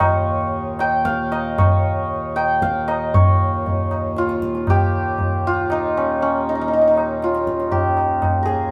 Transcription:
Already playing: D#2 A#2 F4 G4 A#4 D#5 F5 G5
0.00 C#5, tabla na, tabla ge
0.79 G5, tabla na
1.05 F5, tabla ke
1.32 D#5, tabla na
1.58 C#5, tabla na, tabla ge
2.36 G5, tabla na
2.62 F5, tabla ke
2.88 D#5, tabla na
3.14 D#2 A#2 C#5, tabla tin, tabla ge
3.66 tabla tin, tabla ge
3.91 tabla na
4.17 F4, tabla te
4.29 tabla te
4.42 tabla ke
4.55 tabla te
4.67 G4, tabla na, tabla ge
5.19 tabla tin, tabla ge
5.47 F4
5.70 D#4, tabla na
5.97 C#4
6.21 C#4, tabla tin
6.49 D#4
6.55 D#4
6.61 D#4
6.68 D#4, tabla tin
6.73 D#4
6.81 D#4
6.87 D#4
6.97 tabla na
7.22 F4, tabla te
7.35 tabla te
7.47 tabla ke
7.60 tabla te
7.71 G4, tabla tin, tabla ge
7.97 tabla na
8.22 tabla na, tabla ge
8.43 G#4 A#4
8.47 tabla te

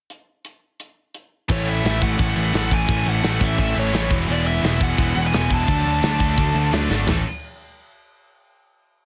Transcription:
0.10 closed hi-hat
0.45 closed hi-hat
0.80 closed hi-hat
1.15 closed hi-hat
1.48 A1 A2 E3 A3 C#4 E4 C#5, kick, crash
1.67 E5, crash
1.84 A1 A2 E3 A3 C#4 E4, snare, crash
2.01 A2 E3 A3 C#4 E4 F#5, kick, crash
2.18 A1 A2 E3 A3 C#4 E4, kick, crash
2.36 A1, crash
2.53 A1 A2 E3 A3 C#4 E4, snare, crash
2.70 A2 E3 A3 C#4 E4, kick, crash
2.74 G#5
2.88 A1 A2 E3 A3 C#4 E4, kick, crash
3.06 A1 F#5, crash
3.23 A1 A2 E3 A3 C#4 E4, snare, crash
3.40 A1 A2 E3 A3 C#4 E4 E5, kick, crash
3.57 A1 A2 E3 A3 C#4 E4 E5, kick, crash
3.76 A1 C#5, crash
3.92 A1 A2 E3 A3 C#4 E4, snare, crash
4.10 E1 E2 B2 E3 G#3 B3 E4, kick, crash
4.28 E1 E2 B2 E3 G#3 B3 E4, crash
4.32 D5
4.46 E5, crash
4.62 E1 E2 B2 E3 G#3 B3 E4, snare, crash
4.80 E2 B2 E3 G#3 B3 E4 F#5, kick, crash
4.97 E1 E2 B2 E3 G#3 B3 E4, kick, crash
5.16 E1, crash
5.27 G#5
5.33 E1 E2 B2 E3 G#3 B3 E4, snare, crash
5.49 E2 B2 E3 G#3 B3 E4, kick, crash
5.54 A5
5.67 D2 D3 F#3 A3 D4, kick, crash
5.85 D2, crash
6.02 D2 D3 F#3 A3 D4, snare, crash
6.19 D2 D3 F#3 A3 D4, kick, crash
6.36 D2 D3 F#3 A3 D4, kick, crash
6.55 D2, crash
6.71 D2 D3 F#3 A3 D4, snare, crash
6.89 G#1 D3 F#3 A3 D4, snare
7.07 A1 A2 E3 A3 C#4 E4, snare, floor tom, splash

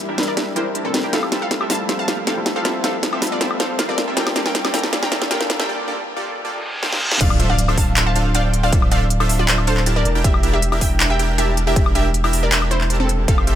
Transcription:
Already playing: E3 G3 A#3 D4 E4 G4 A#4, riser
0.09 D4 E4 G4 A#4 E5
0.17 G3 A#3 D4 E4 A#4, snare, closed hi-hat
0.23 closed hi-hat
0.28 A#4 D5
0.37 D4 E4 G4 A#4 E5, snare, closed hi-hat
0.55 G3 A#3 D4 E4 G4 A#4 C5 G5, closed hi-hat
0.75 D4 E4 G4 A#4 A5, closed hi-hat
0.84 G3 A#3 C4 D4 E4 A4 A#4
0.94 snare, closed hi-hat
1.04 D4 E4 G4 A#4 G5
1.11 F3 G3 A3 C4 E4 F4 G4 A4 E5 F5, snare, closed hi-hat
1.23 high woodblock
1.32 C4 F4 G4 A4 E5, snare, closed hi-hat
1.42 A4 F5
1.51 snare, closed hi-hat
1.61 C4 F4 G4 A4 E5, high woodblock
1.68 G3 C4 E4 F4 A4 F5 A5, snare, open hi-hat
1.75 closed hi-hat
1.89 C4 F4 G4 A4 E5, snare, closed hi-hat
1.99 F5 A5
2.08 C4 F4 G4 A4 F5, snare, closed hi-hat
2.27 C4 F4 G4 A4 F5 G5, snare, closed hi-hat
2.36 G3 C4 E4 F4 A4
2.46 snare, closed hi-hat
2.56 C4 F4 G4 A4 F5
2.63 G3 C4 E4 F4 G4 A4 E5, snare, closed hi-hat
2.84 C4 F4 G4 A4 E5 F5, snare, closed hi-hat
3.03 snare, closed hi-hat
3.12 C4 F4 G4 A4 E5, high woodblock
3.20 G3 C4 E4 F4, snare, open hi-hat
3.24 A4, closed hi-hat
3.32 F4 D5
3.41 C4 F4 G4 A4 E5, snare, closed hi-hat
3.51 high woodblock
3.60 C4 F4 G4 A4 C5 F5, snare, closed hi-hat
3.79 A#3 F4 G4 A4 F5, snare, closed hi-hat
3.88 G3 A#3 D4 F4 A4 A#4 D5
3.98 G3 A#3 F4 A4, snare, closed hi-hat
4.08 A#3 F4 G4 A4 E5
4.15 G3 A#3 D4 F4 G4 A4 A#4 D5 G5, snare, closed hi-hat
4.19 A4
4.27 snare, high woodblock
4.36 A#3 F4 G4 A4 D5, snare, closed hi-hat
4.46 A#4 G5, snare
4.55 snare, closed hi-hat
4.65 A#3 F4 G4 A4 D5, snare, high woodblock
4.72 G3 A#3 D4 F4 G5 A#5, snare, open hi-hat
4.76 A4, closed hi-hat
4.84 snare
4.93 A#3 F4 G4 A4 D5, snare, closed hi-hat
5.03 G5 A#5, snare
5.12 A#3 F4 G4 A4 E5, snare, closed hi-hat
5.22 snare
5.31 A#3 F4 G4 A4 A#4 F5 G5, snare, closed hi-hat
5.40 G3 A#3 D4 F4 A4, snare
5.50 snare, closed hi-hat
5.60 A#3 F4 G4 A4 A#4 E5 G5, snare
5.69 A#3 F4 G4 A4 D5
5.88 A#3 F4 G4 A4 D5
6.17 A#3 F4 G4 A4 D5
6.45 A#3 F4 G4 A4 D5, reverse cymbal
6.83 A#3 F4 G4 A4 F5, snare
6.93 snare
7.12 snare
7.21 D1 D4 F4 A4 C5 D5 E5 F5, kick, closed hi-hat, crash, impact
7.30 high woodblock
7.40 D4 F4 A4 C5 E5, closed hi-hat
7.50 D5 F5
7.59 closed hi-hat
7.68 D4 F4 A4 C5 E5, high woodblock
7.78 F5 A5, kick, open hi-hat
7.97 D4 F4 A4 C5 E5, clap, closed hi-hat
8.07 F5 A5
8.16 D4 F4 A4 C5 F5, closed hi-hat
8.35 D4 F4 A4 C5 D5 F5 G5, closed hi-hat
8.54 closed hi-hat
8.63 D4 F4 A4 C5 D5 F5
8.72 D4 F4 A4 C5 E5, kick, closed hi-hat
8.82 high woodblock
8.91 D4 F4 A4 C5 D5 E5 F5, closed hi-hat
9.10 closed hi-hat
9.20 D4 F4 A4 C5 E5, high woodblock
9.29 open hi-hat
9.39 F4 D5
9.48 D4 F4 A4 C5 E5, clap, closed hi-hat
9.58 high woodblock
9.67 D4 F4 A4 C5 F5, closed hi-hat
9.77 clap
9.86 D4 E4 G4 A#4 A5, closed hi-hat
9.96 A#4 D5
10.05 E1, closed hi-hat
10.15 D4 E4 G4 A#4 G5
10.24 D4 E4 G4 A#4 E5, kick, closed hi-hat
10.34 high woodblock
10.43 D4 E4 G4 A#4 E5, closed hi-hat
10.53 G4 E5
10.62 closed hi-hat
10.72 D4 E4 G4 A#4 E5, high woodblock
10.81 E5 G5, kick, open hi-hat
11.00 D4 E4 G4 A#4 E5, clap, closed hi-hat
11.10 E5 G5
11.19 D4 E4 G4 A#4 G5, closed hi-hat
11.38 D4 E4 G4 A#4 E5 A5, closed hi-hat
11.57 closed hi-hat
11.67 D4 E4 G4 A#4 E5 G5
11.76 kick, closed hi-hat
11.86 high woodblock
11.95 D4 E4 G4 A#4 E5, closed hi-hat
12.14 closed hi-hat
12.24 D4 E4 G4 A#4 E5, high woodblock
12.33 open hi-hat
12.43 A#4 D5
12.52 D4 E4 G4 A#4 E5, clap, closed hi-hat
12.62 high woodblock
12.71 E4 C5, closed hi-hat
12.81 clap
12.90 D4 E4 G4 A#4 A5, closed hi-hat
13.00 C4 A4
13.09 closed hi-hat
13.28 F1 C4 F4 G4 A4 E5 F5, kick, closed hi-hat
13.38 high woodblock
13.47 C4 F4 G4 A4 E5, closed hi-hat

